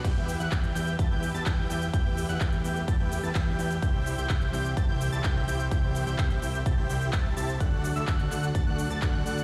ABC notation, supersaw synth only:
X:1
M:4/4
L:1/16
Q:1/4=127
K:Em
V:1 name="Supersaw synth"
[EGBeg]3 [EGBef] [EGB]2 [EGBeg] z [EGBea] [EGBeg]2 [EGBea] [EGeg]2 [EGBeg] z | [EGBeg]3 [EGBef] [EGBeg]2 [EGBeg] z [EGBea] [EGBeg]2 [EGBea] [EGBeg]2 [EGBeg] z | [EGeg]3 [EGceg] [EGeg]2 [EGceg] z [EGc] [EGceg]2 [EGcea] [EGceg]2 [EGceg] z | [EGceg]3 [EGceg] [EGceg]2 [EGceg] z [EGcea] [EGceg] [EGceg]2 [EGcea]2 [EGcea] z |
[DFf]3 [DFAde] [DFAf]2 [DFAdf] z [DFAda] [DFAdf]2 [DFAda] [DFAd]2 [DFAdf] z |]